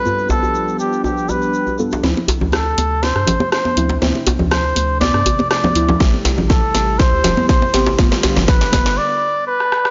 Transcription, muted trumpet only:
\new Staff \with { instrumentName = "Muted trumpet" } { \time 4/4 \key d \dorian \tempo 4 = 121 b'8 a'4 g'8 g'8 b'4 r8 | r4 a'4 c''4 c''4 | r4 c''4 d''4 d''4 | r4 a'4 c''4 c''4 |
r4 b'4 d''4 b'4 | }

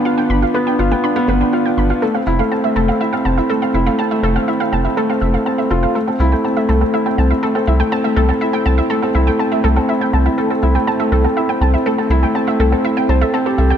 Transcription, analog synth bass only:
\new Staff \with { instrumentName = "Analog synth bass" } { \clef bass \time 4/4 \key c \major \tempo 4 = 122 r8 g,,8 r8 g,,8 r8 g,,8 r8 g,,8 | r8 f,,8 r8 f,,8 r8 f,,8 r8 f,,8 | r8 f,,8 r8 f,,8 r8 f,,8 r8 f,,8 | r8 c,8 r8 c,8 r8 c,8 r8 c,8 |
r8 c,8 r8 c,8 r8 c,8 r8 c,8 | r8 c,8 r8 c,8 r8 c,8 r8 c,8 | r8 c,8 r8 c,8 r8 c,8 r8 c,8 | }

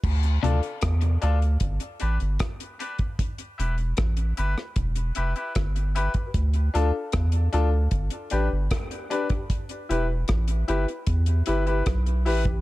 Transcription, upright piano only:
\new Staff \with { instrumentName = "Upright piano" } { \time 4/4 \key e \phrygian \tempo 4 = 76 r8 <d' f' a'>16 r8. <d' f' a'>16 r8. <d' g' b'>16 r8. <d' g' b'>16 r16 | r8 <e' g' b'>16 r8. <e' g' b'>16 r8. <e' g' b'>16 <e' g' b'>16 r8 <e' g' b'>16 <g' b'>16 | r8 <d' f' a'>16 r8. <d' f' a'>16 r8. <d' g' b'>16 r8. <d' g' b'>16 <g' b'>16 | r8 <e' g' b'>16 r8. <e' g' b'>16 r8. <e' g' b'>16 <e' g' b'>16 r8 <e' g' b'>16 r16 | }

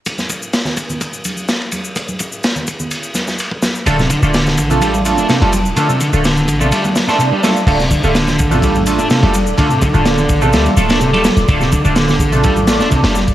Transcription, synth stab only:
\new Staff \with { instrumentName = "Synth stab" } { \time 4/4 \key d \minor \tempo 4 = 126 r1 | r1 | <a d' f' a'>16 r8 <a d' f' a'>16 r8. <a d' f' a'>8. <a d' f' a'>8. <a d' f' a'>16 r8 | <a d' f' a'>16 r8 <a d' f' a'>16 r8. <a d' f' a'>8. r16 <a d' f' a'>16 r8 <a d' f' a'>16 r16 |
<a d' f' a'>16 r8 <a d' f' a'>16 r8. <a d' f' a'>8. <a d' f' a'>8. <a d' f' a'>16 r8 | <a d' f' a'>16 r8 <a d' f' a'>16 r8. <a d' f' a'>8. <a d' f' a'>8. <a d' f' a'>16 r8 | <a d' f' a'>16 r8 <a d' f' a'>16 r8. <a d' f' a'>8. <a d' f' a'>8. <a d' f' a'>16 r8 | }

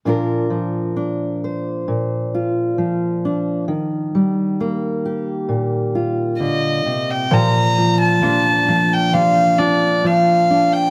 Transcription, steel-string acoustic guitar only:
\new Staff \with { instrumentName = "Steel-string acoustic guitar" } { \clef bass \time 4/4 \key bes \major \tempo 4 = 66 << { <f d' f' bes'>4 d'8 c''4 f'4 d'8 | r4 bes8 g'4 f'4. | r4 d'4 d'8 f'4 d'8 | } \\ { bes,8 f4. bes,4 f4 | ees8 g4. bes,4 d8 c8 | bes,8 f4 f4. f4 | } >> }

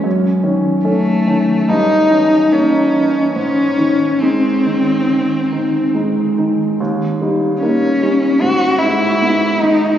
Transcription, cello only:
\new Staff \with { instrumentName = "Cello" } { \time 4/4 \key gis \phrygian \tempo 4 = 72 r4 a4 dis'4 des'4 | cis'4 bis2 r4 | r4 cis'4 fis'8 e'4 dis'8 | }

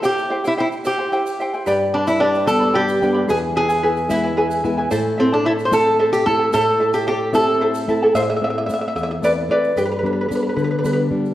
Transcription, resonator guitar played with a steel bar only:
\new Staff \with { instrumentName = "Resonator guitar played with a steel bar" } { \time 6/8 \key a \minor \tempo 4. = 74 g'8. e'16 e'8 g'4~ g'32 r16. | r8 d'16 e'16 d'8 a'8 g'4 | gis'8 gis'4 e'4~ e'32 r16. | r8 c'16 d'16 e'16. c''32 a'8. g'16 a'8 |
a'8. g'16 g'8 a'4~ a'32 r16. | r2. | r2. | }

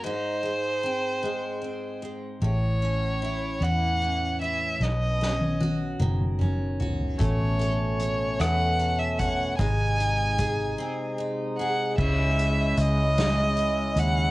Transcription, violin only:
\new Staff \with { instrumentName = "Violin" } { \time 6/8 \key a \lydian \tempo 4. = 50 bis'2~ bis'8 r8 | cis''4. fis''4 e''8 | dis''4 r2 | cis''4. fis''8. e''16 fis''8 |
gis''2 r8 fis''8 | \key cis \minor e''4 dis''4. fis''8 | }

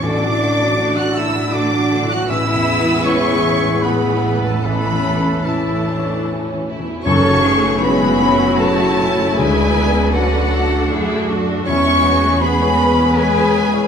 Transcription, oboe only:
\new Staff \with { instrumentName = "Oboe" } { \time 3/4 \key a \major \tempo 4 = 78 d''4~ d''16 fis''16 e''8 d''8. fis''16 | e''8. r16 cis''4 b'8. a'16 | b'4 a'4. r8 | \key fis \minor r2. |
r2. | r2. | }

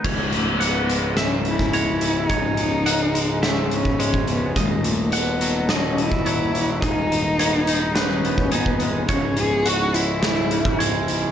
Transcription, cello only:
\new Staff \with { instrumentName = "Cello" } { \time 4/4 \key cis \minor \tempo 4 = 106 gis8 a8 b4 cis'8 e'4. | dis'2 cis'8 cis'4 b8 | gis8 a8 b4 cis'8 e'4. | dis'2 cis'4 b8. r16 |
cis'8 gis'8 fis'8 e'2 r8 | }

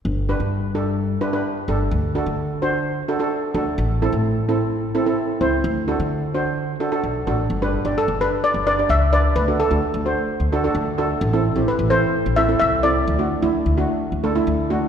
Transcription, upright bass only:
\new Staff \with { instrumentName = "Upright bass" } { \clef bass \time 4/4 \key g \major \tempo 4 = 129 g,,8. g,2 r8. g,,8 | d,8. d2 r8. d,8 | a,,8. a,2 r8. cis,8 | d,8. d2 r16 b,,8 a,,8 |
g,,8. g,,16 r16 g,,8 r8 g,,8. cis,4 | d,8. d,16 r16 d,8 r8 d,8. d,4 | a,,8. a,,16 r16 a,,8 r8 a,,8. c,4 | d,8. d,16 r16 d,8 r8 d,8. d,4 | }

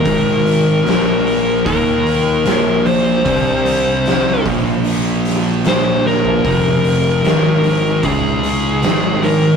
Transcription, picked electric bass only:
\new Staff \with { instrumentName = "Picked electric bass" } { \clef bass \time 4/4 \key bes \mixolydian \tempo 4 = 75 aes,,4 bes,,4 ees,4 bes,,4 | c,4. bes,,4. bes,,4 | f,,4 aes,,4 des,4 aes,,4 | }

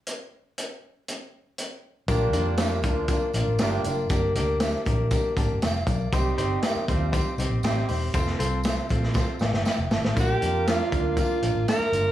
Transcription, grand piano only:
\new Staff \with { instrumentName = "Grand piano" } { \time 4/4 \key bes \major \tempo 4 = 119 << { r1 | r1 | r2 r8 a''8 g''16 f''16 <bes' d''>8~ | <bes' d''>8 r2. r8 |
r2 r8 <d'' f''>8 <ees'' g''>8 <f'' a''>8~ | <f'' a''>8 r2. r8 | } \\ { r1 | <bes d' f' bes'>8 <bes d' f' bes'>8 <bes d' f' bes'>8 <bes d' f' bes'>8 <bes d' f' bes'>8 <bes d' f' bes'>8 <bes d' f' bes'>8 <bes d' f' bes'>8 | <bes d' g' bes'>8 <bes d' g' bes'>8 <bes d' g' bes'>8 <bes d' g' bes'>8 <bes d' g' bes'>8 <bes d' g' bes'>8 r4 | <c' ees' g' c''>8 <c' ees' g' c''>8 <c' ees' g' bes'>8 <c' ees' g' c''>8 <c' ees' g' c''>8 <c' ees' g' c''>8 <c' ees' g' c''>8 <c' ees' g' c''>8 |
<c' f' a' c''>8 <c' f' a' c''>8 <c' f' a' c''>8 <c' f' a' c''>8 <c' f' a' c''>8 r4. | <bes d' f' bes'>8 <bes d' f' bes'>8 <bes d' f' bes'>8 <bes d' f' bes'>8 <bes d' f' bes'>8 <bes d' f' bes'>8 <bes d' f' bes'>8 <bes d' f' bes'>8 | } >> }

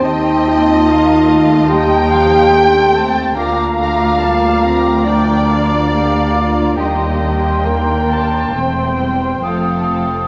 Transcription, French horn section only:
\new Staff \with { instrumentName = "French horn section" } { \time 4/4 \key bes \major \tempo 4 = 70 ees'2 g'2 | f'2 d'2 | g4 bes4 c'4 a4 | }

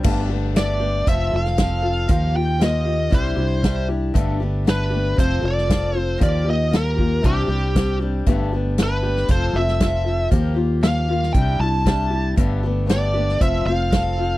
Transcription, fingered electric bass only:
\new Staff \with { instrumentName = "Fingered electric bass" } { \clef bass \time 4/4 \key g \mixolydian \tempo 4 = 117 g,,2 f,,8 f,,4. | ees,2 c,8 c,4. | g,,2 f,,8 f,,4. | ees,2 c,8 c,4. |
g,,2 f,,8 f,,4. | ees,2 c,8 c,4. | g,,2 f,,8 f,,4. | }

